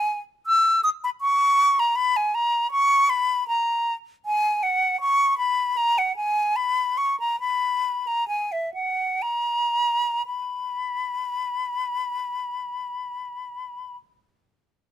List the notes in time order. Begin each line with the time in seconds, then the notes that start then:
Already playing: G#5
0.46 E6
0.83 D#6
1.04 B5
1.21 C#6
1.79 A#5
1.95 B5
2.16 G#5
2.34 A#5
2.71 C#6
3.09 B5
3.48 A#5
4.25 G#5
4.63 F#5
5.00 C#6
5.38 B5
5.77 A#5
5.98 F#5
6.16 G#5
6.56 B5
6.97 C#6
7.20 A#5
7.40 B5
8.07 A#5
8.28 G#5
8.52 E5
8.74 F#5
9.22 A#5
10.26 B5